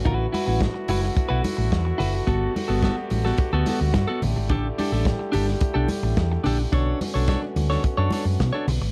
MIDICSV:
0, 0, Header, 1, 6, 480
1, 0, Start_track
1, 0, Key_signature, 2, "minor"
1, 0, Tempo, 556586
1, 43, Time_signature, 4, 2, 24, 8
1, 7691, End_track
2, 0, Start_track
2, 0, Title_t, "Clean electric guitar"
2, 0, Program_c, 0, 27
2, 44, Note_on_c, 0, 64, 75
2, 55, Note_on_c, 0, 66, 84
2, 58, Note_on_c, 0, 71, 95
2, 217, Note_off_c, 0, 64, 0
2, 222, Note_off_c, 0, 66, 0
2, 224, Note_off_c, 0, 71, 0
2, 280, Note_on_c, 0, 64, 69
2, 286, Note_on_c, 0, 66, 70
2, 298, Note_on_c, 0, 71, 83
2, 390, Note_off_c, 0, 71, 0
2, 391, Note_off_c, 0, 64, 0
2, 395, Note_off_c, 0, 66, 0
2, 400, Note_on_c, 0, 71, 68
2, 407, Note_on_c, 0, 66, 66
2, 417, Note_on_c, 0, 64, 56
2, 511, Note_off_c, 0, 71, 0
2, 515, Note_off_c, 0, 66, 0
2, 520, Note_off_c, 0, 64, 0
2, 766, Note_on_c, 0, 64, 90
2, 773, Note_on_c, 0, 66, 81
2, 780, Note_on_c, 0, 71, 89
2, 868, Note_off_c, 0, 71, 0
2, 880, Note_off_c, 0, 66, 0
2, 905, Note_off_c, 0, 64, 0
2, 1109, Note_on_c, 0, 71, 101
2, 1120, Note_on_c, 0, 66, 81
2, 1122, Note_on_c, 0, 64, 79
2, 1223, Note_off_c, 0, 64, 0
2, 1231, Note_off_c, 0, 66, 0
2, 1238, Note_off_c, 0, 71, 0
2, 1708, Note_on_c, 0, 64, 84
2, 1717, Note_on_c, 0, 66, 93
2, 1719, Note_on_c, 0, 71, 83
2, 1833, Note_off_c, 0, 71, 0
2, 1844, Note_off_c, 0, 66, 0
2, 1856, Note_off_c, 0, 64, 0
2, 1956, Note_on_c, 0, 59, 77
2, 1962, Note_on_c, 0, 66, 85
2, 1970, Note_on_c, 0, 69, 92
2, 2181, Note_off_c, 0, 59, 0
2, 2183, Note_off_c, 0, 66, 0
2, 2188, Note_off_c, 0, 69, 0
2, 2311, Note_on_c, 0, 69, 69
2, 2317, Note_on_c, 0, 66, 60
2, 2326, Note_on_c, 0, 59, 60
2, 2427, Note_off_c, 0, 69, 0
2, 2429, Note_off_c, 0, 59, 0
2, 2430, Note_off_c, 0, 66, 0
2, 2439, Note_on_c, 0, 59, 93
2, 2451, Note_on_c, 0, 66, 91
2, 2457, Note_on_c, 0, 69, 112
2, 2553, Note_off_c, 0, 69, 0
2, 2560, Note_off_c, 0, 66, 0
2, 2581, Note_off_c, 0, 59, 0
2, 2800, Note_on_c, 0, 69, 79
2, 2808, Note_on_c, 0, 66, 62
2, 2813, Note_on_c, 0, 59, 51
2, 2909, Note_off_c, 0, 59, 0
2, 2911, Note_off_c, 0, 69, 0
2, 2916, Note_off_c, 0, 66, 0
2, 3043, Note_on_c, 0, 69, 103
2, 3052, Note_on_c, 0, 66, 87
2, 3058, Note_on_c, 0, 59, 77
2, 3159, Note_off_c, 0, 59, 0
2, 3162, Note_off_c, 0, 66, 0
2, 3169, Note_on_c, 0, 59, 68
2, 3172, Note_on_c, 0, 66, 70
2, 3173, Note_off_c, 0, 69, 0
2, 3184, Note_on_c, 0, 69, 81
2, 3274, Note_off_c, 0, 69, 0
2, 3276, Note_off_c, 0, 59, 0
2, 3277, Note_off_c, 0, 66, 0
2, 3514, Note_on_c, 0, 69, 103
2, 3526, Note_on_c, 0, 66, 79
2, 3535, Note_on_c, 0, 59, 71
2, 3634, Note_off_c, 0, 59, 0
2, 3642, Note_off_c, 0, 69, 0
2, 3643, Note_off_c, 0, 66, 0
2, 3879, Note_on_c, 0, 62, 88
2, 3890, Note_on_c, 0, 67, 104
2, 3896, Note_on_c, 0, 69, 105
2, 4021, Note_off_c, 0, 62, 0
2, 4027, Note_off_c, 0, 67, 0
2, 4030, Note_off_c, 0, 69, 0
2, 4125, Note_on_c, 0, 62, 76
2, 4138, Note_on_c, 0, 67, 76
2, 4144, Note_on_c, 0, 69, 76
2, 4234, Note_off_c, 0, 62, 0
2, 4234, Note_off_c, 0, 69, 0
2, 4240, Note_off_c, 0, 67, 0
2, 4244, Note_on_c, 0, 69, 60
2, 4253, Note_on_c, 0, 67, 56
2, 4262, Note_on_c, 0, 62, 48
2, 4353, Note_off_c, 0, 69, 0
2, 4358, Note_off_c, 0, 67, 0
2, 4362, Note_off_c, 0, 62, 0
2, 4587, Note_on_c, 0, 62, 80
2, 4600, Note_on_c, 0, 67, 95
2, 4609, Note_on_c, 0, 69, 93
2, 4711, Note_off_c, 0, 69, 0
2, 4723, Note_off_c, 0, 67, 0
2, 4735, Note_off_c, 0, 62, 0
2, 4951, Note_on_c, 0, 69, 86
2, 4957, Note_on_c, 0, 67, 72
2, 4966, Note_on_c, 0, 62, 76
2, 5073, Note_off_c, 0, 62, 0
2, 5076, Note_off_c, 0, 67, 0
2, 5082, Note_off_c, 0, 69, 0
2, 5553, Note_on_c, 0, 62, 88
2, 5569, Note_on_c, 0, 67, 85
2, 5573, Note_on_c, 0, 69, 100
2, 5672, Note_off_c, 0, 69, 0
2, 5683, Note_off_c, 0, 67, 0
2, 5698, Note_off_c, 0, 62, 0
2, 5797, Note_on_c, 0, 62, 92
2, 5803, Note_on_c, 0, 69, 86
2, 5813, Note_on_c, 0, 73, 102
2, 6021, Note_off_c, 0, 62, 0
2, 6024, Note_off_c, 0, 69, 0
2, 6029, Note_off_c, 0, 73, 0
2, 6157, Note_on_c, 0, 73, 62
2, 6168, Note_on_c, 0, 69, 55
2, 6174, Note_on_c, 0, 62, 51
2, 6269, Note_off_c, 0, 62, 0
2, 6270, Note_off_c, 0, 73, 0
2, 6275, Note_off_c, 0, 69, 0
2, 6279, Note_on_c, 0, 62, 95
2, 6285, Note_on_c, 0, 69, 102
2, 6289, Note_on_c, 0, 73, 109
2, 6390, Note_off_c, 0, 73, 0
2, 6403, Note_off_c, 0, 69, 0
2, 6421, Note_off_c, 0, 62, 0
2, 6638, Note_on_c, 0, 73, 76
2, 6641, Note_on_c, 0, 69, 57
2, 6651, Note_on_c, 0, 62, 52
2, 6744, Note_off_c, 0, 62, 0
2, 6750, Note_off_c, 0, 73, 0
2, 6752, Note_off_c, 0, 69, 0
2, 6877, Note_on_c, 0, 73, 104
2, 6885, Note_on_c, 0, 69, 85
2, 6892, Note_on_c, 0, 62, 75
2, 6991, Note_off_c, 0, 62, 0
2, 6999, Note_off_c, 0, 69, 0
2, 7002, Note_on_c, 0, 62, 67
2, 7006, Note_off_c, 0, 73, 0
2, 7010, Note_on_c, 0, 69, 70
2, 7016, Note_on_c, 0, 73, 68
2, 7107, Note_off_c, 0, 73, 0
2, 7112, Note_off_c, 0, 62, 0
2, 7116, Note_off_c, 0, 69, 0
2, 7353, Note_on_c, 0, 73, 88
2, 7366, Note_on_c, 0, 69, 79
2, 7374, Note_on_c, 0, 62, 86
2, 7470, Note_off_c, 0, 62, 0
2, 7472, Note_off_c, 0, 69, 0
2, 7478, Note_off_c, 0, 73, 0
2, 7691, End_track
3, 0, Start_track
3, 0, Title_t, "French horn section"
3, 0, Program_c, 1, 60
3, 0, Note_on_c, 1, 50, 78
3, 0, Note_on_c, 1, 57, 75
3, 0, Note_on_c, 1, 59, 64
3, 0, Note_on_c, 1, 66, 81
3, 48, Note_on_c, 1, 64, 72
3, 1927, Note_off_c, 1, 59, 0
3, 1947, Note_off_c, 1, 64, 0
3, 1961, Note_on_c, 1, 67, 85
3, 1962, Note_on_c, 1, 59, 67
3, 3608, Note_off_c, 1, 66, 0
3, 3625, Note_off_c, 1, 67, 0
3, 3626, Note_off_c, 1, 59, 0
3, 3644, Note_on_c, 1, 67, 95
3, 3645, Note_on_c, 1, 64, 71
3, 3646, Note_on_c, 1, 55, 75
3, 5782, Note_off_c, 1, 64, 0
3, 5782, Note_off_c, 1, 67, 0
3, 5783, Note_off_c, 1, 55, 0
3, 5801, Note_on_c, 1, 61, 69
3, 5802, Note_on_c, 1, 66, 85
3, 5803, Note_on_c, 1, 59, 67
3, 7688, Note_off_c, 1, 50, 0
3, 7689, Note_off_c, 1, 57, 0
3, 7691, Note_off_c, 1, 59, 0
3, 7691, Note_off_c, 1, 61, 0
3, 7691, Note_off_c, 1, 66, 0
3, 7691, End_track
4, 0, Start_track
4, 0, Title_t, "Fingered electric bass"
4, 0, Program_c, 2, 33
4, 48, Note_on_c, 2, 33, 106
4, 213, Note_off_c, 2, 33, 0
4, 410, Note_on_c, 2, 33, 100
4, 574, Note_off_c, 2, 33, 0
4, 762, Note_on_c, 2, 30, 99
4, 929, Note_off_c, 2, 30, 0
4, 1123, Note_on_c, 2, 35, 85
4, 1206, Note_off_c, 2, 35, 0
4, 1364, Note_on_c, 2, 33, 95
4, 1447, Note_off_c, 2, 33, 0
4, 1482, Note_on_c, 2, 40, 90
4, 1649, Note_off_c, 2, 40, 0
4, 1724, Note_on_c, 2, 30, 100
4, 1890, Note_off_c, 2, 30, 0
4, 1959, Note_on_c, 2, 31, 111
4, 2127, Note_off_c, 2, 31, 0
4, 2323, Note_on_c, 2, 31, 113
4, 2490, Note_off_c, 2, 31, 0
4, 2684, Note_on_c, 2, 33, 87
4, 2851, Note_off_c, 2, 33, 0
4, 3043, Note_on_c, 2, 38, 98
4, 3126, Note_off_c, 2, 38, 0
4, 3284, Note_on_c, 2, 38, 99
4, 3367, Note_off_c, 2, 38, 0
4, 3397, Note_on_c, 2, 43, 115
4, 3482, Note_off_c, 2, 43, 0
4, 3648, Note_on_c, 2, 33, 111
4, 3730, Note_off_c, 2, 33, 0
4, 3763, Note_on_c, 2, 32, 79
4, 3877, Note_off_c, 2, 32, 0
4, 3877, Note_on_c, 2, 33, 115
4, 4046, Note_off_c, 2, 33, 0
4, 4245, Note_on_c, 2, 33, 114
4, 4411, Note_off_c, 2, 33, 0
4, 4602, Note_on_c, 2, 31, 98
4, 4769, Note_off_c, 2, 31, 0
4, 4962, Note_on_c, 2, 35, 87
4, 5046, Note_off_c, 2, 35, 0
4, 5199, Note_on_c, 2, 33, 104
4, 5284, Note_off_c, 2, 33, 0
4, 5321, Note_on_c, 2, 40, 95
4, 5488, Note_off_c, 2, 40, 0
4, 5563, Note_on_c, 2, 34, 99
4, 5729, Note_off_c, 2, 34, 0
4, 5798, Note_on_c, 2, 35, 107
4, 5967, Note_off_c, 2, 35, 0
4, 6168, Note_on_c, 2, 35, 100
4, 6333, Note_off_c, 2, 35, 0
4, 6520, Note_on_c, 2, 38, 98
4, 6688, Note_off_c, 2, 38, 0
4, 6882, Note_on_c, 2, 42, 92
4, 6965, Note_off_c, 2, 42, 0
4, 7118, Note_on_c, 2, 42, 95
4, 7203, Note_off_c, 2, 42, 0
4, 7245, Note_on_c, 2, 47, 118
4, 7327, Note_off_c, 2, 47, 0
4, 7482, Note_on_c, 2, 35, 90
4, 7565, Note_off_c, 2, 35, 0
4, 7600, Note_on_c, 2, 32, 92
4, 7684, Note_off_c, 2, 32, 0
4, 7691, End_track
5, 0, Start_track
5, 0, Title_t, "Muted clean electric guitar strokes"
5, 640, Note_on_c, 9, 29, 47
5, 726, Note_off_c, 9, 29, 0
5, 878, Note_on_c, 9, 29, 49
5, 964, Note_off_c, 9, 29, 0
5, 994, Note_on_c, 9, 29, 43
5, 1081, Note_off_c, 9, 29, 0
5, 1233, Note_on_c, 9, 29, 36
5, 1319, Note_off_c, 9, 29, 0
5, 1353, Note_on_c, 9, 29, 43
5, 1440, Note_off_c, 9, 29, 0
5, 1596, Note_on_c, 9, 29, 44
5, 1682, Note_off_c, 9, 29, 0
5, 1843, Note_on_c, 9, 29, 43
5, 1929, Note_off_c, 9, 29, 0
5, 2199, Note_on_c, 9, 29, 43
5, 2285, Note_off_c, 9, 29, 0
5, 2563, Note_on_c, 9, 29, 50
5, 2650, Note_off_c, 9, 29, 0
5, 2680, Note_on_c, 9, 29, 54
5, 2766, Note_off_c, 9, 29, 0
5, 2919, Note_on_c, 9, 29, 45
5, 3006, Note_off_c, 9, 29, 0
5, 3284, Note_on_c, 9, 29, 53
5, 3371, Note_off_c, 9, 29, 0
5, 3404, Note_on_c, 9, 29, 41
5, 3491, Note_off_c, 9, 29, 0
5, 3637, Note_on_c, 9, 29, 42
5, 3724, Note_off_c, 9, 29, 0
5, 3762, Note_on_c, 9, 29, 49
5, 3849, Note_off_c, 9, 29, 0
5, 4478, Note_on_c, 9, 29, 50
5, 4564, Note_off_c, 9, 29, 0
5, 4721, Note_on_c, 9, 29, 40
5, 4807, Note_off_c, 9, 29, 0
5, 4842, Note_on_c, 9, 29, 42
5, 4929, Note_off_c, 9, 29, 0
5, 5084, Note_on_c, 9, 29, 46
5, 5170, Note_off_c, 9, 29, 0
5, 5203, Note_on_c, 9, 29, 57
5, 5289, Note_off_c, 9, 29, 0
5, 5323, Note_on_c, 9, 29, 37
5, 5409, Note_off_c, 9, 29, 0
5, 5447, Note_on_c, 9, 29, 57
5, 5533, Note_off_c, 9, 29, 0
5, 5682, Note_on_c, 9, 29, 50
5, 5769, Note_off_c, 9, 29, 0
5, 6044, Note_on_c, 9, 29, 51
5, 6130, Note_off_c, 9, 29, 0
5, 6400, Note_on_c, 9, 29, 47
5, 6487, Note_off_c, 9, 29, 0
5, 6523, Note_on_c, 9, 29, 33
5, 6609, Note_off_c, 9, 29, 0
5, 6754, Note_on_c, 9, 29, 48
5, 6840, Note_off_c, 9, 29, 0
5, 7118, Note_on_c, 9, 29, 52
5, 7204, Note_off_c, 9, 29, 0
5, 7248, Note_on_c, 9, 29, 35
5, 7334, Note_off_c, 9, 29, 0
5, 7603, Note_on_c, 9, 29, 49
5, 7689, Note_off_c, 9, 29, 0
5, 7691, End_track
6, 0, Start_track
6, 0, Title_t, "Drums"
6, 48, Note_on_c, 9, 36, 115
6, 52, Note_on_c, 9, 42, 66
6, 60, Note_on_c, 9, 62, 34
6, 60, Note_on_c, 9, 64, 80
6, 134, Note_off_c, 9, 36, 0
6, 139, Note_off_c, 9, 42, 0
6, 146, Note_off_c, 9, 62, 0
6, 146, Note_off_c, 9, 64, 0
6, 294, Note_on_c, 9, 63, 90
6, 297, Note_on_c, 9, 46, 78
6, 381, Note_off_c, 9, 63, 0
6, 383, Note_off_c, 9, 46, 0
6, 523, Note_on_c, 9, 36, 112
6, 523, Note_on_c, 9, 42, 79
6, 532, Note_on_c, 9, 38, 115
6, 540, Note_on_c, 9, 62, 39
6, 540, Note_on_c, 9, 63, 61
6, 609, Note_off_c, 9, 36, 0
6, 609, Note_off_c, 9, 42, 0
6, 619, Note_off_c, 9, 38, 0
6, 627, Note_off_c, 9, 62, 0
6, 627, Note_off_c, 9, 63, 0
6, 760, Note_on_c, 9, 46, 67
6, 772, Note_on_c, 9, 62, 32
6, 772, Note_on_c, 9, 63, 71
6, 847, Note_off_c, 9, 46, 0
6, 858, Note_off_c, 9, 62, 0
6, 858, Note_off_c, 9, 63, 0
6, 891, Note_on_c, 9, 38, 43
6, 977, Note_off_c, 9, 38, 0
6, 1006, Note_on_c, 9, 36, 120
6, 1007, Note_on_c, 9, 42, 70
6, 1012, Note_on_c, 9, 62, 35
6, 1092, Note_off_c, 9, 36, 0
6, 1093, Note_off_c, 9, 42, 0
6, 1098, Note_off_c, 9, 62, 0
6, 1244, Note_on_c, 9, 46, 66
6, 1247, Note_on_c, 9, 62, 42
6, 1247, Note_on_c, 9, 63, 94
6, 1331, Note_off_c, 9, 46, 0
6, 1334, Note_off_c, 9, 62, 0
6, 1334, Note_off_c, 9, 63, 0
6, 1484, Note_on_c, 9, 36, 109
6, 1488, Note_on_c, 9, 38, 113
6, 1488, Note_on_c, 9, 42, 49
6, 1570, Note_off_c, 9, 36, 0
6, 1574, Note_off_c, 9, 38, 0
6, 1574, Note_off_c, 9, 42, 0
6, 1725, Note_on_c, 9, 64, 94
6, 1726, Note_on_c, 9, 46, 74
6, 1811, Note_off_c, 9, 64, 0
6, 1812, Note_off_c, 9, 46, 0
6, 1961, Note_on_c, 9, 36, 108
6, 1964, Note_on_c, 9, 42, 72
6, 1971, Note_on_c, 9, 62, 33
6, 1971, Note_on_c, 9, 64, 75
6, 2047, Note_off_c, 9, 36, 0
6, 2051, Note_off_c, 9, 42, 0
6, 2057, Note_off_c, 9, 62, 0
6, 2057, Note_off_c, 9, 64, 0
6, 2210, Note_on_c, 9, 62, 43
6, 2210, Note_on_c, 9, 63, 93
6, 2213, Note_on_c, 9, 46, 80
6, 2296, Note_off_c, 9, 62, 0
6, 2296, Note_off_c, 9, 63, 0
6, 2299, Note_off_c, 9, 46, 0
6, 2436, Note_on_c, 9, 42, 69
6, 2437, Note_on_c, 9, 36, 121
6, 2446, Note_on_c, 9, 38, 113
6, 2456, Note_on_c, 9, 62, 42
6, 2456, Note_on_c, 9, 63, 54
6, 2522, Note_off_c, 9, 42, 0
6, 2523, Note_off_c, 9, 36, 0
6, 2532, Note_off_c, 9, 38, 0
6, 2543, Note_off_c, 9, 62, 0
6, 2543, Note_off_c, 9, 63, 0
6, 2675, Note_on_c, 9, 46, 61
6, 2686, Note_on_c, 9, 62, 30
6, 2686, Note_on_c, 9, 63, 74
6, 2761, Note_off_c, 9, 46, 0
6, 2772, Note_off_c, 9, 62, 0
6, 2772, Note_off_c, 9, 63, 0
6, 2805, Note_on_c, 9, 38, 42
6, 2891, Note_off_c, 9, 38, 0
6, 2912, Note_on_c, 9, 42, 75
6, 2918, Note_on_c, 9, 36, 120
6, 2926, Note_on_c, 9, 62, 32
6, 2998, Note_off_c, 9, 42, 0
6, 3005, Note_off_c, 9, 36, 0
6, 3013, Note_off_c, 9, 62, 0
6, 3156, Note_on_c, 9, 46, 69
6, 3163, Note_on_c, 9, 62, 43
6, 3163, Note_on_c, 9, 63, 90
6, 3243, Note_off_c, 9, 46, 0
6, 3249, Note_off_c, 9, 62, 0
6, 3249, Note_off_c, 9, 63, 0
6, 3396, Note_on_c, 9, 38, 113
6, 3396, Note_on_c, 9, 42, 53
6, 3399, Note_on_c, 9, 36, 108
6, 3482, Note_off_c, 9, 38, 0
6, 3483, Note_off_c, 9, 42, 0
6, 3485, Note_off_c, 9, 36, 0
6, 3641, Note_on_c, 9, 62, 47
6, 3641, Note_on_c, 9, 64, 98
6, 3642, Note_on_c, 9, 46, 67
6, 3727, Note_off_c, 9, 62, 0
6, 3727, Note_off_c, 9, 64, 0
6, 3728, Note_off_c, 9, 46, 0
6, 3876, Note_on_c, 9, 42, 69
6, 3878, Note_on_c, 9, 36, 108
6, 3892, Note_on_c, 9, 62, 37
6, 3892, Note_on_c, 9, 64, 76
6, 3963, Note_off_c, 9, 42, 0
6, 3965, Note_off_c, 9, 36, 0
6, 3978, Note_off_c, 9, 62, 0
6, 3978, Note_off_c, 9, 64, 0
6, 4126, Note_on_c, 9, 46, 87
6, 4134, Note_on_c, 9, 62, 36
6, 4134, Note_on_c, 9, 63, 82
6, 4213, Note_off_c, 9, 46, 0
6, 4220, Note_off_c, 9, 62, 0
6, 4220, Note_off_c, 9, 63, 0
6, 4357, Note_on_c, 9, 42, 81
6, 4358, Note_on_c, 9, 36, 112
6, 4367, Note_on_c, 9, 38, 118
6, 4375, Note_on_c, 9, 62, 39
6, 4375, Note_on_c, 9, 63, 58
6, 4443, Note_off_c, 9, 42, 0
6, 4444, Note_off_c, 9, 36, 0
6, 4453, Note_off_c, 9, 38, 0
6, 4461, Note_off_c, 9, 62, 0
6, 4461, Note_off_c, 9, 63, 0
6, 4597, Note_on_c, 9, 46, 68
6, 4607, Note_on_c, 9, 62, 35
6, 4607, Note_on_c, 9, 63, 62
6, 4607, Note_on_c, 9, 64, 74
6, 4683, Note_off_c, 9, 46, 0
6, 4693, Note_off_c, 9, 62, 0
6, 4693, Note_off_c, 9, 63, 0
6, 4693, Note_off_c, 9, 64, 0
6, 4725, Note_on_c, 9, 38, 37
6, 4811, Note_off_c, 9, 38, 0
6, 4835, Note_on_c, 9, 42, 66
6, 4841, Note_on_c, 9, 36, 126
6, 4921, Note_off_c, 9, 42, 0
6, 4927, Note_off_c, 9, 36, 0
6, 5075, Note_on_c, 9, 63, 95
6, 5078, Note_on_c, 9, 46, 63
6, 5161, Note_off_c, 9, 63, 0
6, 5164, Note_off_c, 9, 46, 0
6, 5321, Note_on_c, 9, 38, 111
6, 5322, Note_on_c, 9, 36, 105
6, 5322, Note_on_c, 9, 42, 53
6, 5330, Note_on_c, 9, 62, 38
6, 5408, Note_off_c, 9, 36, 0
6, 5408, Note_off_c, 9, 38, 0
6, 5408, Note_off_c, 9, 42, 0
6, 5416, Note_off_c, 9, 62, 0
6, 5554, Note_on_c, 9, 64, 95
6, 5566, Note_on_c, 9, 46, 76
6, 5641, Note_off_c, 9, 64, 0
6, 5652, Note_off_c, 9, 46, 0
6, 5800, Note_on_c, 9, 62, 34
6, 5800, Note_on_c, 9, 64, 70
6, 5801, Note_on_c, 9, 36, 123
6, 5802, Note_on_c, 9, 42, 68
6, 5886, Note_off_c, 9, 62, 0
6, 5886, Note_off_c, 9, 64, 0
6, 5888, Note_off_c, 9, 36, 0
6, 5888, Note_off_c, 9, 42, 0
6, 6046, Note_on_c, 9, 62, 41
6, 6046, Note_on_c, 9, 63, 86
6, 6047, Note_on_c, 9, 46, 83
6, 6133, Note_off_c, 9, 46, 0
6, 6133, Note_off_c, 9, 62, 0
6, 6133, Note_off_c, 9, 63, 0
6, 6275, Note_on_c, 9, 42, 82
6, 6278, Note_on_c, 9, 36, 110
6, 6284, Note_on_c, 9, 38, 120
6, 6286, Note_on_c, 9, 62, 42
6, 6286, Note_on_c, 9, 63, 62
6, 6361, Note_off_c, 9, 42, 0
6, 6364, Note_off_c, 9, 36, 0
6, 6371, Note_off_c, 9, 38, 0
6, 6373, Note_off_c, 9, 62, 0
6, 6373, Note_off_c, 9, 63, 0
6, 6520, Note_on_c, 9, 46, 64
6, 6522, Note_on_c, 9, 63, 70
6, 6606, Note_off_c, 9, 46, 0
6, 6608, Note_off_c, 9, 63, 0
6, 6647, Note_on_c, 9, 38, 42
6, 6733, Note_off_c, 9, 38, 0
6, 6759, Note_on_c, 9, 62, 31
6, 6760, Note_on_c, 9, 42, 78
6, 6761, Note_on_c, 9, 36, 116
6, 6846, Note_off_c, 9, 42, 0
6, 6846, Note_off_c, 9, 62, 0
6, 6848, Note_off_c, 9, 36, 0
6, 6989, Note_on_c, 9, 62, 40
6, 6989, Note_on_c, 9, 63, 92
6, 7004, Note_on_c, 9, 46, 67
6, 7076, Note_off_c, 9, 62, 0
6, 7076, Note_off_c, 9, 63, 0
6, 7091, Note_off_c, 9, 46, 0
6, 7245, Note_on_c, 9, 36, 107
6, 7247, Note_on_c, 9, 38, 122
6, 7247, Note_on_c, 9, 42, 57
6, 7331, Note_off_c, 9, 36, 0
6, 7333, Note_off_c, 9, 38, 0
6, 7334, Note_off_c, 9, 42, 0
6, 7483, Note_on_c, 9, 64, 99
6, 7486, Note_on_c, 9, 46, 78
6, 7569, Note_off_c, 9, 64, 0
6, 7572, Note_off_c, 9, 46, 0
6, 7691, End_track
0, 0, End_of_file